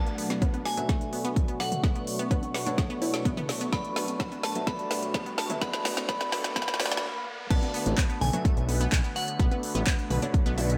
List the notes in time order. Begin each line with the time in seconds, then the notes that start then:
Already playing: B2 F#3 A3 D4 F#4 B4 D5 A5 C#6, riser
0.07 closed hi-hat
0.18 B3, open hi-hat
0.30 snare, closed hi-hat, high conga
0.42 B3, kick, closed hi-hat, high bongo
0.54 B3, closed hi-hat, high conga
0.65 G#5, snare, open hi-hat
0.77 F#3 A3 D4 F#4 B4 E5, closed hi-hat
0.89 A3, kick, snare, closed hi-hat
1.01 closed hi-hat
1.13 B3, open hi-hat
1.25 B3, closed hi-hat
1.36 kick, closed hi-hat
1.48 B3, closed hi-hat
1.60 F#3 F#5, snare, open hi-hat
1.72 closed hi-hat, mid tom
1.84 A3 B3 D4 F#4 B4 F#5, kick, snare, closed hi-hat
1.95 B3, closed hi-hat
2.07 open hi-hat
2.19 B3, closed hi-hat, high conga
2.31 B3, kick, closed hi-hat, high bongo
2.43 closed hi-hat, high conga
2.54 B4, snare, open hi-hat
2.66 A3 D4 F#4 B4 C#5, closed hi-hat
2.78 kick, snare, closed hi-hat
2.90 B3, closed hi-hat
3.02 E4, open hi-hat, high bongo
3.14 snare, closed hi-hat
3.25 B3, kick, closed hi-hat
3.37 B3, closed hi-hat, mid tom
3.49 snare, open hi-hat
3.61 B3, closed hi-hat
3.73 A3 B3 D4 F#4 B4 D5 B5, kick, snare, closed hi-hat
3.85 closed hi-hat
3.96 B3, snare, open hi-hat
4.08 closed hi-hat, high conga
4.20 B3, kick, snare, closed hi-hat, high bongo
4.32 B3, closed hi-hat, high conga
4.43 A5, snare, open hi-hat
4.55 F#3 A3 D4 F#4 B4 E5, closed hi-hat
4.67 B3 F#4 B5, kick, snare, closed hi-hat
4.79 closed hi-hat
4.91 B3, snare, open hi-hat
5.03 closed hi-hat
5.14 B3, kick, snare, closed hi-hat
5.26 B3, closed hi-hat
5.38 A5, snare, open hi-hat
5.50 F#3 A3 D4 F#4 B4 E5, closed hi-hat, mid tom
5.62 A3 B3 D4 F#4 D5 B5, kick, snare, closed hi-hat
5.73 snare, closed hi-hat
5.85 B3, snare, open hi-hat
5.97 snare, closed hi-hat, high conga
6.09 A3 B3 D4 F#4 B4 D5 B5, kick, snare, closed hi-hat, high bongo
6.21 snare, closed hi-hat, high conga
6.32 B3, snare, open hi-hat
6.44 snare, closed hi-hat
6.56 B3 B5, kick, snare, closed hi-hat
6.62 snare
6.68 snare, closed hi-hat
6.74 snare
6.80 A3 B3 D4 F#4 B4 D5 B5, snare, open hi-hat, high bongo
6.86 snare
6.92 snare, closed hi-hat
6.97 snare
7.50 B1 D3 A3 B3 D4 F#4 B4 D5 A5, kick, closed hi-hat, crash
7.62 closed hi-hat, high conga
7.74 B3 B4, open hi-hat
7.86 A1, closed hi-hat, high conga
7.98 B3 B4, kick, clap, closed hi-hat, high bongo
8.10 B3 B4, closed hi-hat
8.21 B1 G#5, open hi-hat, mid tom
8.33 F#3 A3 D4 F#4 B4 E5, closed hi-hat
8.45 A3 A4, kick, closed hi-hat
8.57 B1, closed hi-hat
8.69 B3 B4, open hi-hat
8.81 B3 B4, closed hi-hat
8.92 B1, kick, clap, closed hi-hat
9.04 B3 B4, closed hi-hat
9.16 F#3 F#4 F#5, open hi-hat
9.28 closed hi-hat
9.39 B1 A3 B3 D4 F#4 B4 F#5, kick, closed hi-hat
9.51 B3 B4, closed hi-hat, high conga
9.63 open hi-hat
9.75 A1 B3 B4, closed hi-hat, high conga
9.87 B3 B4, kick, clap, closed hi-hat, high bongo
9.99 closed hi-hat
10.10 B1 B4 B5, open hi-hat, mid tom
10.22 A3 D4 F#4 B4 C#5 D5, closed hi-hat
10.34 kick, closed hi-hat
10.46 B1 B3 B4, closed hi-hat
10.58 A3 D4 E4 F#4 B4 D5 E5, open hi-hat
10.70 closed hi-hat